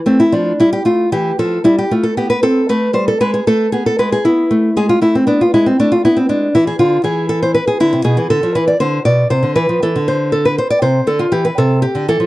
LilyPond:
\new Staff \with { instrumentName = "Nylon-string guitar" } { \time 12/8 \key a \minor \tempo 4. = 79 << { c'16 e'16 d'8 e'16 g'16 f'8 g'8 a'8 e'16 g'16 f'16 a'16 g'16 b'16 a'8 b'8 c''16 a'16 | b'16 gis'16 a'8 gis'16 a'16 b'16 gis'16 e'4 gis'16 f'16 e'16 c'16 d'16 f'16 e'16 c'16 d'16 f'16 e'16 c'16 | d'8 e'16 gis'16 f'8 gis'8 a'16 c''16 b'16 gis'16 e'8 gis'8 a'8 b'16 d''16 c''8 d''8 | c''8 b'8 a'8 c''8 a'16 b'16 c''16 d''16 c''8 a'16 f'16 g'16 b'16 a'8 g'8 a'8 | } \\ { a8 f8 g8 a8 e8 f8 g8 a8 b8 c'8 a8 g8 | gis8 a8 b8 gis8 b8 a8 gis8 a8 b8 gis8 a8 b8 | gis8 e8 d8 e4. d16 c16 b,16 e16 d16 f16 e8 d8 b,8 | c16 d16 e16 f16 e16 d4.~ d16 c8 d8 e8 c8. d16 e16 f16 | } >> }